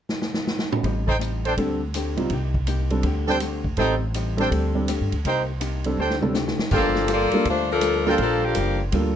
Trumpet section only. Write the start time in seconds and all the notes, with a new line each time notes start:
1.07 D#4 A4 C5 G5
1.45 D4 A4 C5 G5
3.28 D4 A4 C5 G5
3.78 D#4 A4 C5 G5
4.39 D4 A4 C5 G5
5.25 D#4 A#4 C5 G5
5.99 D4 A4 C5 G5
6.71 F4 G4 A4 G5
8.06 F4 A4 A#4 G5